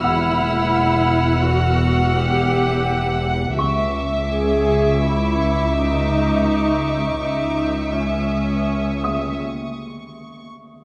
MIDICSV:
0, 0, Header, 1, 7, 480
1, 0, Start_track
1, 0, Tempo, 500000
1, 10406, End_track
2, 0, Start_track
2, 0, Title_t, "Violin section"
2, 0, Program_c, 0, 48
2, 0, Note_on_c, 0, 88, 35
2, 0, Note_on_c, 0, 89, 41
2, 2368, Note_off_c, 0, 89, 0
2, 3053, Note_off_c, 0, 88, 0
2, 3436, Note_on_c, 0, 86, 36
2, 3439, Note_on_c, 0, 85, 36
2, 7880, Note_off_c, 0, 86, 0
2, 7880, Note_on_c, 0, 87, 36
2, 9349, Note_off_c, 0, 87, 0
2, 10056, Note_off_c, 0, 85, 0
2, 10406, End_track
3, 0, Start_track
3, 0, Title_t, "Grand piano"
3, 0, Program_c, 1, 0
3, 0, Control_c, 1, 64, 127
3, 31, Note_on_c, 1, 88, 39
3, 38, Note_on_c, 1, 78, 30
3, 2031, Note_off_c, 1, 88, 0
3, 2035, Note_off_c, 1, 78, 0
3, 3442, Note_on_c, 1, 85, 43
3, 3456, Control_c, 1, 64, 0
3, 3595, Control_c, 1, 64, 127
3, 5461, Note_off_c, 1, 85, 0
3, 8677, Note_on_c, 1, 87, 30
3, 8681, Note_on_c, 1, 76, 21
3, 9008, Note_off_c, 1, 87, 0
3, 9010, Note_off_c, 1, 76, 0
3, 10406, End_track
4, 0, Start_track
4, 0, Title_t, "Violin section"
4, 0, Program_c, 2, 48
4, 31, Note_on_c, 2, 78, 48
4, 3397, Note_off_c, 2, 78, 0
4, 3437, Note_on_c, 2, 76, 45
4, 6859, Note_off_c, 2, 76, 0
4, 6888, Note_on_c, 2, 76, 33
4, 8993, Note_off_c, 2, 76, 0
4, 10406, End_track
5, 0, Start_track
5, 0, Title_t, "Viola section"
5, 0, Program_c, 3, 48
5, 42, Note_on_c, 3, 64, 75
5, 1375, Note_off_c, 3, 64, 0
5, 1407, Note_on_c, 3, 66, 64
5, 2075, Note_off_c, 3, 66, 0
5, 2079, Note_on_c, 3, 67, 71
5, 3441, Note_off_c, 3, 67, 0
5, 4127, Note_on_c, 3, 68, 65
5, 4775, Note_off_c, 3, 68, 0
5, 4818, Note_on_c, 3, 64, 53
5, 5498, Note_on_c, 3, 63, 60
5, 5500, Note_off_c, 3, 64, 0
5, 6893, Note_off_c, 3, 63, 0
5, 6904, Note_on_c, 3, 63, 49
5, 7605, Note_off_c, 3, 63, 0
5, 7617, Note_on_c, 3, 61, 39
5, 9037, Note_off_c, 3, 61, 0
5, 10406, End_track
6, 0, Start_track
6, 0, Title_t, "Cello section"
6, 0, Program_c, 4, 48
6, 37, Note_on_c, 4, 40, 48
6, 3400, Note_off_c, 4, 40, 0
6, 3443, Note_on_c, 4, 37, 48
6, 6862, Note_off_c, 4, 37, 0
6, 6900, Note_on_c, 4, 37, 36
6, 8999, Note_off_c, 4, 37, 0
6, 10406, End_track
7, 0, Start_track
7, 0, Title_t, "Double bass section"
7, 0, Program_c, 5, 48
7, 30, Note_on_c, 5, 28, 52
7, 3397, Note_off_c, 5, 28, 0
7, 3437, Note_on_c, 5, 37, 45
7, 6859, Note_off_c, 5, 37, 0
7, 6894, Note_on_c, 5, 37, 37
7, 8996, Note_off_c, 5, 37, 0
7, 10406, End_track
0, 0, End_of_file